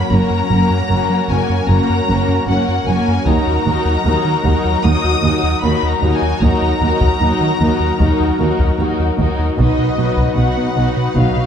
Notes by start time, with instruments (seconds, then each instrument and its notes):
Already playing: analog synth pad F#3 F#4, viola section A#3, violin section F#4 A#4 B5
0.11 double bass section F#1, cello section F#2, analog synth bass F#2, analog synth pad F#3 C#4 F#4 A#4, viola section A#3 C#4, violin section F#4 A#4 A#5
0.30 analog synth bass F#2
0.50 double bass section F#1, analog synth bass F#2, cello section F#2, viola section A#3 C#4, violin section F#4 A#4
0.70 analog synth bass F#2
0.90 double bass section F#1, analog synth bass F#2, cello section F#2, viola section A#3 C#4, violin section F#4 A#4
1.10 analog synth bass F#3
1.29 double bass section F#1, analog synth bass F#2, cello section F#2, viola section A#3 C#4, violin section F#4 A#4 G#5
1.50 analog synth bass F#2
1.69 double bass section F#1, cello section F#2, analog synth bass F#2, viola section A#3 C#4, violin section F#4 A#4 A#5
1.90 analog synth bass F#2
2.08 double bass section F#1, cello section F#2, analog synth bass F#3, viola section A#3 C#4, violin section F#4 A#4
2.28 analog synth bass F#2
2.48 double bass section F#1, cello section F#2, analog synth bass F#2, viola section A#3 C#4, violin section F#4 A#4 F#5
2.68 analog synth bass F#2
2.87 double bass section F#1, cello section F#2, analog synth bass F#2, viola section A#3 C#4, violin section F#4 A#4 G#5
3.08 analog synth bass F#2
3.26 analog synth bass D#2, double bass section D#2, cello section D#2, viola section F#3 D#4, analog synth pad F#3 D#4 F#4 A#4, violin section F#4 A#4 A#5, taiko
3.47 analog synth bass D#2
3.66 analog synth bass D#2, double bass section D#2, cello section D#2, viola section F#3 D#4, violin section F#4 A#4
3.85 analog synth bass D#2
4.05 analog synth bass D#2, double bass section D#2, cello section D#2, viola section F#3 D#4, violin section F#4 A#4
4.25 analog synth bass D#3
4.45 double bass section D#2, cello section D#2, analog synth bass D#2, viola section F#3 D#4, violin section F#4 A#4, taiko
4.65 analog synth bass D#2
4.84 cello section D#2, double bass section D#2, analog synth bass D#2, viola section F#3 D#4, violin section F#4 A#4 D#6
5.04 analog synth bass D#2
5.23 double bass section D#2, cello section D#2, analog synth bass D#3, viola section F#3 D#4, violin section F#4 A#4
5.43 analog synth bass D#2
5.63 analog synth bass D#2, cello section D#2, double bass section D#2, viola section F#3 D#4, violin section F#4 A#4 B5
5.83 analog synth bass D#2
5.89 violin section A#5
6.02 analog synth bass D#2, cello section D#2, double bass section D#2, viola section F#3 D#4, violin section F#4 A#4
6.15 violin section G#5
6.22 analog synth bass D#2
6.41 analog synth bass D#2, cello section D#2, double bass section D#2, viola section F#3 D#4, analog synth pad F#3 D#4 F#4 A#4, violin section F#4 A#4 A#5, taiko
6.62 analog synth bass D#2
6.81 analog synth bass D#2, double bass section D#2, cello section D#2, viola section F#3 D#4, violin section F#4 A#4
7.01 analog synth bass D#2, taiko
7.20 analog synth bass D#2, double bass section D#2, cello section D#2, viola section F#3 D#4, violin section F#4 A#4
7.41 analog synth bass D#3
7.60 analog synth bass D#2, cello section D#2, double bass section D#2, viola section F#3 D#4, violin section F#4 A#4
7.80 analog synth bass D#2
8.00 analog synth bass D#2, cello section D#2, double bass section D#2, viola section F#3 D#4, violin section F#4 A#4, taiko
8.20 analog synth bass D#2
8.40 cello section D#2, double bass section D#2, analog synth bass D#3, viola section F#3 D#4, violin section F#4 A#4
8.59 analog synth bass D#2, taiko
8.79 analog synth bass D#2, cello section D#2, double bass section D#2, viola section F#3 D#4, violin section F#4 A#4
9.00 analog synth bass D#2
9.19 analog synth bass D#2, cello section D#2, double bass section D#2, viola section F#3 D#4, violin section F#4 A#4, taiko
9.39 analog synth bass D#2
9.58 double bass section B1, cello section B2, analog synth bass B2, analog synth pad F#3 D#4 F#4 B4, viola section F#3 D#4, violin section F#4 B4 D#5, taiko
9.79 analog synth bass B2
9.97 double bass section B1, analog synth bass B2, cello section B2, viola section F#3 D#4, violin section F#4 B4
10.17 analog synth bass B2, taiko
10.36 double bass section B1, cello section B2, analog synth bass B2, viola section F#3 D#4, violin section F#4 B4 F#5
10.58 analog synth bass B3
10.76 double bass section B1, cello section B2, analog synth bass B2, viola section F#3 D#4, violin section F#4 B4
10.97 analog synth bass B2
11.16 double bass section B1, cello section B2, analog synth bass B2, viola section F#3 D#4, violin section F#4 B4 F5, taiko
11.37 analog synth bass B2